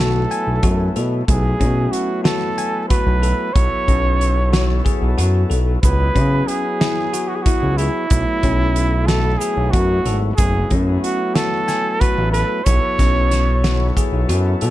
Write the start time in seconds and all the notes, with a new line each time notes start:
Already playing: B1 F#3 A3 B3 E4 F#4 A4
0.31 G#5, closed hi-hat
0.47 B1
0.63 F#2 F#4, kick, closed hi-hat
0.96 B2 A4, closed hi-hat
1.28 B1 F#3 A3 B3 E4 G#4, kick, closed hi-hat
1.60 B2 C#4, kick, closed hi-hat
1.92 F#4, closed hi-hat
2.24 F#4 A4, snare, closed hi-hat
2.58 G#5, closed hi-hat
2.89 F#4 B4, kick, closed hi-hat
3.07 B1
3.22 A4, closed hi-hat
3.53 B1 F#3 B3 E4 A4 C#5, kick, closed hi-hat
3.88 B1 C#4, kick, closed hi-hat
4.21 closed hi-hat
4.53 F#4, snare, closed hi-hat
4.85 G#4, kick, closed hi-hat
5.02 B1
5.18 F#2 F#4, closed hi-hat
5.50 B1 A4, closed hi-hat
5.83 C#2 F#3 B3 E4 G#4 B4, kick, closed hi-hat, shaker
6.15 C#3 C#4, kick, closed hi-hat
6.47 G#4, closed hi-hat
6.81 E4, snare, closed hi-hat
7.13 F#4, closed hi-hat, shaker
7.28 F#4
7.36 G#4
7.42 F#4, kick, closed hi-hat
7.46 E4
7.62 C#2
7.77 E4 G#4, closed hi-hat
8.10 B1 F#3 A3 B3 E4, kick, closed hi-hat, shaker
8.43 B1 C#4, kick, closed hi-hat
8.76 closed hi-hat
9.06 F#4 A4, snare, closed hi-hat
9.38 G#4, closed hi-hat, shaker
9.57 B1
9.71 F#2 F#4, kick, closed hi-hat
10.05 G#1 A4, closed hi-hat
10.36 F#1 F#3 A3 B3 E4 G#4, kick, closed hi-hat, shaker
10.71 F#2 C#4, kick, closed hi-hat
11.01 F#4, closed hi-hat
11.35 F#4 A4, snare, closed hi-hat
11.68 G#5, snare, closed hi-hat, shaker
12.00 F#4 B4, kick, closed hi-hat
12.17 A1
12.32 A4 B4, closed hi-hat
12.64 B1 F#3 B3 E4 A4 C#5, kick, closed hi-hat, shaker
12.99 B1 C#4, kick, snare, closed hi-hat, shaker
13.31 snare, closed hi-hat, shaker
13.64 F#4, snare, closed hi-hat
13.97 G#4, kick, closed hi-hat, shaker
14.12 B1
14.29 F#2 F#4, closed hi-hat, shaker
14.61 B2 A4, closed hi-hat